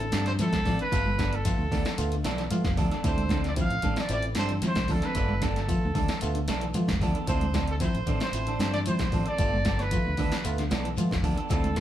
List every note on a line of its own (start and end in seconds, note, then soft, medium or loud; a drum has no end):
0.00 0.20 D3 medium
0.00 0.24 A4 medium
0.00 closed hi-hat soft
0.12 0.36 G2 medium
0.12 0.29 F3 medium
0.12 0.29 C4 medium
0.12 0.29 D4 medium
0.12 0.30 A4 medium
0.12 snare medium
0.12 closed hi-hat medium
0.12 high conga medium
0.12 shekere soft
0.26 0.33 C5 medium
0.26 muted clean electric guitar stroke medium
0.26 snare soft
0.26 closed hi-hat soft
0.39 0.56 F3 medium
0.39 0.59 F3 medium
0.39 0.56 C4 medium
0.39 0.57 E4 medium
0.39 0.78 A4 medium
0.39 snare soft
0.39 closed hi-hat medium
0.39 high conga medium
0.39 low conga medium
0.39 shekere medium
0.53 0.64 C2 medium
0.53 kick medium
0.53 snare medium
0.53 closed hi-hat soft
0.53 high conga medium
0.65 0.77 A1 medium
0.65 0.82 F3 medium
0.65 0.76 F3 medium
0.65 0.82 C4 medium
0.65 0.82 D4 medium
0.65 muted clean electric guitar stroke medium
0.65 kick medium
0.65 snare soft
0.65 open hi-hat medium
0.65 low conga medium
0.65 shekere soft
0.79 0.89 D3 medium
0.79 1.37 B4 medium
0.79 closed hi-hat soft
0.92 1.51 G1 loud
0.92 1.09 F3 medium
0.92 1.09 A3 medium
0.92 1.09 B3 medium
0.92 1.10 B3 medium
0.92 1.10 F4 medium
0.92 1.09 A4 medium
0.92 muted clean electric guitar stroke medium
0.92 kick medium
0.92 snare soft
0.92 closed hi-hat medium
0.92 shekere medium
1.06 high conga medium
1.18 1.39 D3 medium
1.18 1.35 F3 medium
1.18 1.35 B3 medium
1.18 1.35 D4 medium
1.18 1.36 A4 medium
1.18 kick medium
1.18 snare medium
1.18 closed hi-hat soft
1.18 high conga medium
1.18 shekere soft
1.33 2.13 A4 medium
1.33 closed hi-hat soft
1.45 1.65 F3 medium
1.45 1.62 A3 medium
1.45 1.63 B3 medium
1.45 1.63 F4 medium
1.45 kick medium
1.45 snare soft
1.45 closed hi-hat medium
1.45 high conga soft
1.45 shekere medium
1.58 1.69 D2 medium
1.71 1.84 D2 medium
1.71 1.92 D3 medium
1.71 1.88 F3 medium
1.71 1.88 B3 medium
1.71 1.88 D4 medium
1.71 kick medium
1.71 snare soft
1.71 open hi-hat medium
1.71 low conga medium
1.71 shekere soft
1.85 snare medium
1.85 closed hi-hat soft
1.85 high conga soft
1.98 2.22 D2 medium
1.98 2.15 A3 loud
1.98 2.15 B3 medium
1.98 2.15 F4 loud
1.98 closed hi-hat medium
1.98 shekere medium
2.12 2.32 D3 medium
2.12 closed hi-hat soft
2.24 2.48 B1 medium
2.24 2.41 F3 medium
2.24 2.41 B3 medium
2.24 2.41 D4 medium
2.24 2.41 A4 medium
2.24 2.50 D5 medium
2.24 snare medium
2.24 closed hi-hat medium
2.24 high conga medium
2.24 shekere soft
2.38 2.48 E3 medium
2.38 snare soft
2.38 closed hi-hat soft
2.51 2.71 F3 medium
2.51 2.68 A3 medium
2.51 2.68 B3 medium
2.51 2.68 F4 medium
2.51 2.76 F5 medium
2.51 closed hi-hat medium
2.51 high conga medium
2.51 shekere medium
2.64 2.76 F1 medium
2.64 kick medium
2.64 snare medium
2.64 high conga medium
2.77 2.90 D2 medium
2.77 2.91 F3 medium
2.77 2.88 F3 medium
2.77 2.91 B3 medium
2.77 2.90 D4 medium
2.77 2.90 A4 medium
2.77 3.02 A5 medium
2.77 kick medium
2.77 open hi-hat medium
2.77 low conga medium
2.77 shekere soft
2.92 3.01 D3 medium
2.92 3.05 B3 soft
2.92 3.04 D4 soft
2.92 3.04 A4 soft
2.92 snare soft
2.92 closed hi-hat soft
3.04 3.62 D2 medium
3.04 3.21 F3 medium
3.04 3.21 C4 medium
3.04 3.21 D4 medium
3.04 3.21 E4 medium
3.04 3.21 A4 medium
3.04 3.43 C5 medium
3.04 muted clean electric guitar stroke medium
3.04 kick medium
3.04 snare soft
3.04 closed hi-hat medium
3.04 high conga soft
3.04 shekere medium
3.18 closed hi-hat soft
3.18 high conga medium
3.29 3.50 D3 medium
3.29 3.47 F3 medium
3.29 3.47 C4 medium
3.29 3.47 D4 medium
3.29 3.48 A4 medium
3.29 kick medium
3.29 snare medium
3.29 closed hi-hat soft
3.29 high conga medium
3.29 shekere soft
3.44 3.53 D5 medium
3.44 snare soft
3.44 closed hi-hat soft
3.56 3.74 F3 medium
3.56 3.77 F3 medium
3.56 3.74 C4 medium
3.56 3.74 E4 medium
3.56 kick medium
3.56 snare soft
3.56 closed hi-hat medium
3.56 high conga soft
3.56 low conga medium
3.56 shekere medium
3.61 4.01 F5 loud
3.70 3.81 A1 medium
3.70 closed hi-hat soft
3.82 3.95 A1 medium
3.82 4.03 D3 medium
3.82 4.00 F3 medium
3.82 4.00 C4 medium
3.82 4.00 D4 medium
3.82 4.00 A4 medium
3.82 kick medium
3.82 closed hi-hat soft
3.82 high conga medium
3.82 low conga medium
3.82 shekere soft
3.96 4.11 D5 medium
3.96 snare medium
3.96 closed hi-hat soft
3.96 high conga soft
4.09 4.33 A1 medium
4.09 4.27 F3 medium
4.09 4.27 C4 medium
4.09 4.27 E4 medium
4.09 closed hi-hat medium
4.09 shekere medium
4.13 4.24 D5 medium
4.23 closed hi-hat soft
4.35 4.60 G2 medium
4.35 4.53 F3 medium
4.35 4.53 C4 medium
4.35 4.53 D4 medium
4.35 4.53 A4 medium
4.35 snare medium
4.35 closed hi-hat soft
4.35 high conga medium
4.35 shekere soft
4.39 4.50 C5 medium
4.49 4.60 E3 medium
4.49 closed hi-hat soft
4.62 4.82 F3 medium
4.62 4.80 F3 medium
4.62 4.80 C4 medium
4.62 4.80 E4 medium
4.62 snare soft
4.62 closed hi-hat medium
4.62 high conga medium
4.62 low conga medium
4.62 shekere medium
4.68 4.94 C5 medium
4.75 4.87 C2 medium
4.75 kick medium
4.75 snare medium
4.75 closed hi-hat soft
4.75 high conga medium
4.88 5.01 D2 medium
4.88 4.99 F3 medium
4.88 5.03 F3 soft
4.88 5.03 C4 medium
4.88 5.03 D4 medium
4.88 5.02 A4 medium
4.88 kick medium
4.88 open hi-hat medium
4.88 low conga medium
4.88 shekere soft
4.92 5.06 A4 medium
5.02 5.12 D3 medium
5.02 5.15 C4 soft
5.02 5.16 A4 soft
5.02 5.43 B4 medium
5.02 snare soft
5.02 closed hi-hat soft
5.15 5.74 G1 medium
5.15 5.32 F3 medium
5.15 5.33 A3 medium
5.15 5.33 B3 medium
5.15 5.32 B3 medium
5.15 5.32 D4 medium
5.15 5.33 F4 medium
5.15 5.33 A4 medium
5.15 kick medium
5.15 closed hi-hat medium
5.15 high conga soft
5.15 shekere medium
5.29 high conga medium
5.42 5.61 D3 medium
5.42 5.58 F3 medium
5.42 5.59 B3 medium
5.42 5.59 D4 medium
5.42 5.59 A4 medium
5.42 6.46 A4 medium
5.42 kick medium
5.42 snare medium
5.42 closed hi-hat medium
5.42 high conga medium
5.42 shekere soft
5.56 snare soft
5.56 closed hi-hat soft
5.68 5.88 F3 medium
5.68 5.86 A3 medium
5.68 5.86 B3 medium
5.68 5.86 F4 medium
5.68 kick medium
5.68 closed hi-hat medium
5.68 high conga soft
5.68 low conga medium
5.68 shekere medium
5.85 5.95 D2 medium
5.94 6.07 D2 medium
5.94 6.15 D3 medium
5.94 6.11 F3 medium
5.94 6.12 D4 medium
5.94 6.12 A4 medium
5.94 muted clean electric guitar stroke medium
5.94 kick medium
5.94 open hi-hat medium
5.94 high conga medium
5.94 low conga medium
5.94 shekere soft
6.08 snare medium
6.08 closed hi-hat soft
6.08 high conga soft
6.21 6.46 D2 medium
6.21 6.39 A3 medium
6.21 6.39 B3 medium
6.21 6.39 F4 loud
6.21 closed hi-hat medium
6.21 shekere medium
6.35 6.55 D3 medium
6.35 closed hi-hat soft
6.48 6.72 B1 medium
6.48 6.65 F3 medium
6.48 6.65 B3 medium
6.48 6.65 D4 medium
6.48 6.65 A4 medium
6.48 snare medium
6.48 closed hi-hat soft
6.48 high conga medium
6.48 shekere soft
6.61 6.72 E3 medium
6.61 closed hi-hat soft
6.74 6.94 F3 medium
6.74 6.92 A3 medium
6.74 6.92 B3 medium
6.74 6.92 F4 medium
6.74 closed hi-hat medium
6.74 high conga medium
6.74 low conga medium
6.74 shekere medium
6.88 7.00 F1 medium
6.88 kick medium
6.88 snare medium
6.88 high conga medium
7.01 7.13 D2 medium
7.01 7.15 F3 medium
7.01 7.12 F3 medium
7.01 7.15 B3 medium
7.01 7.16 D4 medium
7.01 7.15 A4 medium
7.01 kick medium
7.01 open hi-hat medium
7.01 low conga medium
7.01 shekere soft
7.15 7.25 D3 medium
7.15 7.28 B3 soft
7.15 7.28 A4 soft
7.15 closed hi-hat soft
7.27 7.86 D2 medium
7.27 7.44 F3 medium
7.27 7.45 F3 medium
7.27 7.44 C4 medium
7.27 7.45 C4 medium
7.27 7.45 D4 medium
7.27 7.46 E4 medium
7.27 7.45 A4 medium
7.27 7.66 C5 medium
7.27 kick medium
7.27 closed hi-hat medium
7.27 shekere medium
7.41 closed hi-hat soft
7.41 high conga medium
7.54 7.74 D3 medium
7.54 7.71 F3 medium
7.54 7.71 C4 medium
7.54 7.71 D4 medium
7.54 7.71 A4 medium
7.54 kick medium
7.54 snare medium
7.54 closed hi-hat soft
7.54 high conga medium
7.54 shekere soft
7.68 7.76 A4 medium
7.68 closed hi-hat soft
7.80 7.98 F3 medium
7.80 8.00 F3 medium
7.80 7.98 C4 medium
7.80 7.98 E4 medium
7.80 8.19 C5 medium
7.80 kick medium
7.80 snare soft
7.80 closed hi-hat medium
7.80 high conga soft
7.80 low conga medium
7.80 shekere medium
7.95 8.06 A1 medium
7.95 closed hi-hat soft
8.07 8.19 A1 medium
8.07 8.27 D3 medium
8.07 8.24 F3 medium
8.07 8.24 C4 medium
8.07 8.24 D4 medium
8.07 8.24 A4 medium
8.07 kick medium
8.07 closed hi-hat soft
8.07 low conga medium
8.07 shekere soft
8.20 8.71 C5 medium
8.20 snare medium
8.20 closed hi-hat soft
8.20 high conga soft
8.33 8.56 A1 medium
8.33 8.51 F3 medium
8.33 8.51 C4 medium
8.33 8.51 E4 medium
8.33 closed hi-hat medium
8.33 shekere medium
8.47 8.67 D3 medium
8.47 8.59 C4 soft
8.47 8.60 D4 soft
8.47 8.60 A4 soft
8.47 closed hi-hat soft
8.59 8.83 G2 medium
8.59 8.76 F3 medium
8.59 8.77 C4 medium
8.59 8.77 D4 medium
8.59 8.77 A4 medium
8.59 snare medium
8.59 closed hi-hat soft
8.59 high conga medium
8.59 shekere soft
8.73 8.83 E3 medium
8.73 8.79 D5 loud
8.73 snare soft
8.73 closed hi-hat soft
8.86 9.04 F3 medium
8.86 9.06 F3 medium
8.86 9.04 C4 medium
8.86 9.04 E4 medium
8.86 9.24 C5 medium
8.86 closed hi-hat medium
8.86 high conga medium
8.86 low conga medium
8.86 shekere medium
8.99 9.11 C2 medium
8.99 kick medium
8.99 snare medium
8.99 closed hi-hat soft
8.99 high conga medium
9.12 9.25 A1 medium
9.12 9.22 F3 medium
9.12 9.27 F3 medium
9.12 9.26 C4 medium
9.12 9.26 D4 medium
9.12 9.25 A4 medium
9.12 kick medium
9.12 open hi-hat medium
9.12 low conga medium
9.12 shekere soft
9.26 9.39 C4 soft
9.26 9.38 D4 soft
9.26 9.38 A4 soft
9.26 9.83 D5 loud
9.26 muted clean electric guitar stroke medium
9.26 closed hi-hat soft
9.38 9.97 G1 loud
9.38 9.55 F3 medium
9.38 9.57 A3 medium
9.38 9.55 B3 medium
9.38 9.57 B3 medium
9.38 9.56 D4 medium
9.38 9.57 F4 medium
9.38 9.56 A4 medium
9.38 kick medium
9.38 closed hi-hat medium
9.38 high conga soft
9.38 shekere medium
9.53 high conga medium
9.65 9.82 B3 medium
9.65 9.82 D4 medium
9.65 9.82 A4 medium
9.65 kick medium
9.65 snare medium
9.65 closed hi-hat soft
9.65 high conga medium
9.65 shekere soft
9.79 10.60 B4 medium
9.79 snare soft
9.79 closed hi-hat soft
9.91 10.11 F3 medium
9.91 10.10 A3 medium
9.91 10.09 B3 medium
9.91 10.10 F4 medium
9.91 kick medium
9.91 closed hi-hat medium
9.91 high conga soft
9.91 low conga medium
9.91 shekere medium
10.06 10.17 D2 medium
10.17 10.30 D2 medium
10.17 10.38 D3 medium
10.17 10.35 F3 medium
10.17 10.35 B3 medium
10.17 10.35 D4 medium
10.17 10.35 A4 medium
10.17 kick medium
10.17 open hi-hat medium
10.17 low conga medium
10.17 shekere soft
10.32 snare medium
10.32 closed hi-hat soft
10.32 high conga soft
10.44 10.68 D2 medium
10.44 10.62 A3 loud
10.44 10.62 B3 medium
10.44 10.62 F4 loud
10.44 closed hi-hat medium
10.44 shekere medium
10.58 10.78 D3 medium
10.58 snare soft
10.58 closed hi-hat soft
10.70 10.94 B1 medium
10.70 10.87 F3 medium
10.70 10.88 B3 medium
10.70 10.88 D4 medium
10.70 10.88 A4 medium
10.70 snare medium
10.70 closed hi-hat medium
10.70 high conga medium
10.70 shekere soft
10.85 10.94 E3 medium
10.85 closed hi-hat soft
10.97 11.17 F3 medium
10.97 11.15 A3 medium
10.97 11.15 B3 medium
10.97 11.15 F4 medium
10.97 closed hi-hat medium
10.97 high conga medium
10.97 low conga medium
10.97 shekere medium
11.11 11.23 F1 medium
11.11 kick medium
11.11 snare medium
11.11 high conga medium
11.23 11.36 D2 medium
11.23 11.37 F3 medium
11.23 11.34 F3 medium
11.23 11.38 B3 medium
11.23 11.37 D4 medium
11.23 11.37 A4 medium
11.23 kick medium
11.23 open hi-hat medium
11.23 low conga medium
11.23 shekere soft
11.37 11.46 D3 medium
11.37 11.50 B3 soft
11.37 11.49 D4 soft
11.37 11.50 A4 medium
11.37 closed hi-hat soft
11.50 11.80 D2 medium
11.50 11.67 F3 medium
11.50 11.68 F3 medium
11.50 11.67 C4 medium
11.50 11.68 C4 medium
11.50 11.67 D4 medium
11.50 11.68 E4 medium
11.50 11.80 A4 medium
11.50 11.67 A4 medium
11.50 kick medium
11.50 snare soft
11.50 closed hi-hat medium
11.50 high conga soft
11.50 shekere medium
11.64 closed hi-hat soft
11.64 high conga medium
11.76 11.80 D3 medium
11.76 11.80 F3 medium
11.76 11.80 C4 medium
11.76 kick medium
11.76 snare medium
11.76 closed hi-hat soft
11.76 high conga medium